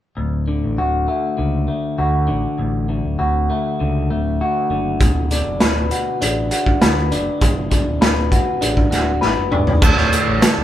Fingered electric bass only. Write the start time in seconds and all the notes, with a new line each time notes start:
0.18 D1
0.64 A1
0.78 D1
1.39 C#2
1.99 D2
2.30 A1
2.59 A1
3.05 D1
3.20 D1
3.81 C#2
4.11 D1
4.70 F#1
5.01 D1
5.47 F#1
5.62 D1
6.22 A1
6.83 D2
7.13 F#1
7.42 F#1
7.88 D1
8.03 D1
8.63 A1
8.93 D1
9.24 G#1
9.39 F#1
9.53 E1
9.67 D1
9.82 D1
10.28 A1
10.58 D1